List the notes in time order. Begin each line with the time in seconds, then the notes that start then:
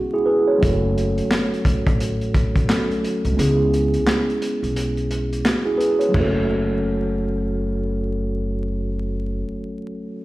Already playing: G#3 B3 C#4 F#4
0.14 E4 G#4
0.26 G#4 B4
0.47 C#5
0.58 F#3 A3 C#4
0.62 F#1 F#4, kick, closed hi-hat
0.98 closed hi-hat
1.18 closed hi-hat
1.31 snare, clap, closed hi-hat
1.54 closed hi-hat
1.65 kick, closed hi-hat
1.87 A1, kick, closed hi-hat
2.00 closed hi-hat
2.21 closed hi-hat
2.34 kick, closed hi-hat
2.56 kick, closed hi-hat
2.67 F#3 A3 C#4 F#4 A4, snare, clap, closed hi-hat
2.91 closed hi-hat
3.04 closed hi-hat
3.25 C2, closed hi-hat
3.34 G#3 B3 C#4
3.38 C#2 E4 G#4, closed hi-hat
3.74 closed hi-hat
3.94 closed hi-hat
4.07 snare, clap, closed hi-hat
4.30 closed hi-hat
4.42 closed hi-hat
4.63 B1, closed hi-hat
4.76 closed hi-hat
4.97 closed hi-hat
5.11 closed hi-hat
5.33 closed hi-hat
5.45 F#4, snare, clap, closed hi-hat
5.66 E4 G#4
5.78 G#4 B4, closed hi-hat
5.99 C#5, closed hi-hat
6.09 F#3 A3
6.14 F#1 C#4 F#4, kick, floor tom, crash
6.20 A4